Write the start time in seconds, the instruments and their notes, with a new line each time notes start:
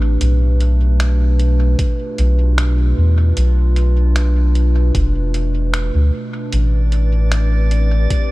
Already playing: sub bass A1, ambient pad A2 A3 C4 D4 G4 B4
0.21 sub bass B1, ambient pad B2, closed hi-hat
0.61 closed hi-hat
1.00 finger snap, closed hi-hat
1.39 closed hi-hat
1.58 ambient pad F4
1.79 kick, closed hi-hat
2.18 sub bass B1, closed hi-hat
2.58 finger snap, closed hi-hat
2.98 sub bass E2
3.37 sub bass B1, closed hi-hat
3.76 closed hi-hat
4.16 finger snap, closed hi-hat
4.55 closed hi-hat
4.95 sub bass F1, kick, closed hi-hat
5.34 closed hi-hat
5.74 finger snap, closed hi-hat
5.95 sub bass D2
6.53 sub bass A1, ambient pad A2, synth texture D5, closed hi-hat
6.92 closed hi-hat
7.23 ambient pad C4
7.32 finger snap, closed hi-hat
7.68 ambient pad G4, closed hi-hat
8.10 kick, closed hi-hat